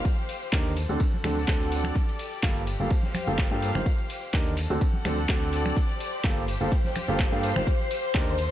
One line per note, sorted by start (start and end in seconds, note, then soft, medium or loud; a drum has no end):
0.00 0.76 G4 medium
0.00 1.24 C5 medium
0.00 0.76 F5 medium
0.05 kick loud
0.05 ride medium
0.05 tambourine medium
0.19 tambourine soft
0.28 open hi-hat loud
0.28 ride medium
0.28 tambourine medium
0.42 tambourine soft
0.53 0.87 D#2 loud
0.53 0.71 D3 medium
0.53 0.71 D4 medium
0.53 0.71 D#4 medium
0.53 0.71 G4 medium
0.53 0.71 A#4 loud
0.53 kick loud
0.53 snare loud
0.53 clap loud
0.53 ride medium
0.53 tambourine soft
0.66 snare soft
0.66 tambourine soft
0.77 2.72 A4 medium
0.77 open hi-hat loud
0.77 ride medium
0.77 tambourine medium
0.89 0.97 D2 medium
0.89 0.99 D3 medium
0.89 0.99 C4 medium
0.89 0.99 D4 medium
0.89 0.99 F#4 medium
0.89 0.99 A4 loud
0.89 tambourine soft
1.00 kick loud
1.00 ride medium
1.00 tambourine soft
1.14 high conga medium
1.24 1.46 D2 medium
1.24 1.36 D3 medium
1.24 1.36 C4 medium
1.24 1.36 D4 medium
1.24 1.36 F#4 medium
1.24 1.36 A4 medium
1.24 2.72 D5 medium
1.24 finger snap medium
1.24 snare soft
1.24 open hi-hat loud
1.24 ride medium
1.24 tambourine medium
1.24 high conga medium
1.31 1.95 F#5 medium
1.37 snare soft
1.37 tambourine soft
1.48 1.92 D2 medium
1.48 1.94 D3 medium
1.48 1.94 C4 medium
1.48 1.94 D4 medium
1.48 1.94 F#4 medium
1.48 1.94 A4 loud
1.48 kick loud
1.48 snare loud
1.48 clap loud
1.48 ride medium
1.48 tambourine medium
1.61 snare soft
1.72 snare soft
1.72 open hi-hat loud
1.72 ride medium
1.72 tambourine medium
1.84 finger snap medium
1.84 tambourine soft
1.84 high conga medium
1.95 4.57 G4 medium
1.95 kick loud
1.95 ride medium
1.95 tambourine soft
2.09 ride soft
2.09 tambourine soft
2.19 open hi-hat loud
2.19 ride medium
2.19 tambourine medium
2.33 tambourine soft
2.39 2.77 G1 loud
2.39 2.61 G2 medium
2.39 2.61 A#3 medium
2.39 2.61 F4 medium
2.39 2.61 G4 medium
2.39 2.61 A4 loud
2.39 5.05 C5 medium
2.39 kick loud
2.39 ride medium
2.39 tambourine soft
2.43 snare loud
2.43 clap loud
2.56 tambourine soft
2.67 open hi-hat loud
2.67 ride medium
2.67 tambourine loud
2.80 2.88 G1 loud
2.80 2.90 G2 medium
2.80 2.90 A#3 medium
2.80 2.90 F4 medium
2.80 2.90 G4 medium
2.80 2.90 A4 medium
2.80 4.57 F5 medium
2.80 tambourine soft
2.90 kick loud
2.90 ride medium
2.90 tambourine medium
3.03 snare soft
3.03 high conga medium
3.14 finger snap medium
3.14 open hi-hat loud
3.14 ride medium
3.14 tambourine medium
3.14 high conga medium
3.27 3.49 G1 medium
3.27 3.45 G2 medium
3.27 3.45 A#3 medium
3.27 3.45 F4 medium
3.27 3.45 G4 medium
3.27 3.45 A4 loud
3.27 tambourine soft
3.38 kick loud
3.38 snare loud
3.38 clap loud
3.38 ride medium
3.38 tambourine medium
3.51 3.68 G2 medium
3.51 3.73 G2 medium
3.51 3.68 A#3 medium
3.51 3.68 F4 medium
3.51 3.68 G4 medium
3.51 3.68 A4 loud
3.51 snare medium
3.62 snare soft
3.62 open hi-hat loud
3.62 ride medium
3.62 tambourine loud
3.75 3.82 G1 medium
3.75 3.85 D#3 medium
3.75 3.85 A#3 medium
3.75 3.85 F4 medium
3.75 3.85 G4 medium
3.75 3.85 C5 medium
3.75 finger snap medium
3.75 snare soft
3.75 tambourine soft
3.75 high conga medium
3.86 kick loud
3.86 ride medium
3.86 tambourine medium
3.99 tambourine soft
4.10 open hi-hat loud
4.10 ride medium
4.10 tambourine medium
4.23 tambourine soft
4.33 4.68 D#2 loud
4.33 4.52 D3 medium
4.33 4.52 D4 medium
4.33 4.52 D#4 medium
4.33 4.52 G4 medium
4.33 4.52 A#4 loud
4.33 kick loud
4.33 snare loud
4.33 clap loud
4.33 ride medium
4.33 tambourine medium
4.46 snare soft
4.46 tambourine soft
4.57 6.53 A4 medium
4.57 clap soft
4.57 open hi-hat loud
4.57 ride medium
4.57 tambourine medium
4.70 4.78 D2 loud
4.70 4.80 D3 medium
4.70 4.80 C4 medium
4.70 4.80 D4 medium
4.70 4.80 F#4 medium
4.70 4.80 A4 loud
4.70 tambourine soft
4.81 6.48 D5 medium
4.81 kick loud
4.81 ride medium
4.81 tambourine medium
4.86 5.76 F#5 medium
4.94 high conga medium
5.05 5.27 D2 medium
5.05 5.17 D3 medium
5.05 5.17 C4 medium
5.05 5.17 D4 medium
5.05 5.17 F#4 medium
5.05 5.17 A4 medium
5.05 finger snap medium
5.05 snare soft
5.05 open hi-hat loud
5.05 ride medium
5.05 tambourine medium
5.05 high conga medium
5.17 snare soft
5.17 tambourine soft
5.29 5.73 D2 loud
5.29 5.75 D3 medium
5.29 5.75 C4 medium
5.29 5.75 D4 medium
5.29 5.75 F#4 medium
5.29 5.75 A4 loud
5.29 kick loud
5.29 snare loud
5.29 clap loud
5.29 ride medium
5.29 tambourine soft
5.42 snare soft
5.53 snare soft
5.53 open hi-hat loud
5.53 ride medium
5.53 tambourine medium
5.65 finger snap medium
5.65 tambourine soft
5.65 high conga medium
5.76 8.38 G4 medium
5.76 8.51 C5 medium
5.76 8.51 C6 medium
5.76 kick loud
5.76 ride medium
5.76 tambourine soft
5.89 ride soft
5.89 tambourine soft
6.00 open hi-hat loud
6.00 ride medium
6.00 tambourine medium
6.13 tambourine soft
6.23 6.58 G1 loud
6.23 6.42 G2 medium
6.23 6.42 A#3 medium
6.23 6.42 F4 medium
6.23 6.42 G4 medium
6.23 6.42 A4 medium
6.23 kick loud
6.23 snare loud
6.23 clap loud
6.23 ride medium
6.23 tambourine soft
6.38 tambourine soft
6.46 8.51 C5 medium
6.46 open hi-hat loud
6.46 ride medium
6.46 tambourine medium
6.61 6.69 G1 medium
6.61 6.71 G2 medium
6.61 6.71 A#3 medium
6.61 6.71 F4 medium
6.61 6.71 G4 medium
6.61 6.71 A4 medium
6.61 8.38 F5 medium
6.61 tambourine soft
6.72 kick loud
6.72 ride medium
6.72 tambourine medium
6.84 snare soft
6.84 high conga medium
6.95 finger snap medium
6.95 open hi-hat loud
6.95 ride medium
6.95 tambourine medium
6.95 high conga medium
7.08 7.30 G1 medium
7.08 7.26 G2 medium
7.08 7.26 A#3 medium
7.08 7.26 F4 medium
7.08 7.26 G4 medium
7.08 7.26 A4 loud
7.08 tambourine soft
7.19 kick loud
7.19 snare loud
7.19 clap loud
7.19 ride medium
7.19 tambourine soft
7.32 7.49 G2 medium
7.32 7.54 G2 medium
7.32 7.49 A#3 medium
7.32 7.49 F4 medium
7.32 7.49 G4 medium
7.32 7.49 A4 loud
7.32 snare medium
7.43 snare soft
7.43 open hi-hat loud
7.43 ride medium
7.43 tambourine medium
7.56 7.63 G1 loud
7.56 7.66 D#3 medium
7.56 7.66 A#3 medium
7.56 7.66 F4 medium
7.56 7.66 G4 medium
7.56 7.66 C5 medium
7.56 finger snap medium
7.56 snare soft
7.56 tambourine soft
7.56 high conga medium
7.67 kick loud
7.67 ride medium
7.67 tambourine soft
7.79 tambourine soft
7.91 open hi-hat loud
7.91 ride medium
7.91 tambourine medium
8.04 tambourine soft
8.14 8.49 D#2 loud
8.14 8.33 D3 loud
8.14 8.33 D4 medium
8.14 8.33 D#4 medium
8.14 8.33 G4 medium
8.14 8.33 A#4 loud
8.14 kick loud
8.14 snare loud
8.14 clap loud
8.14 ride medium
8.14 tambourine soft
8.27 snare medium
8.27 tambourine soft
8.38 8.51 A4 medium
8.38 open hi-hat loud
8.38 ride medium
8.38 tambourine medium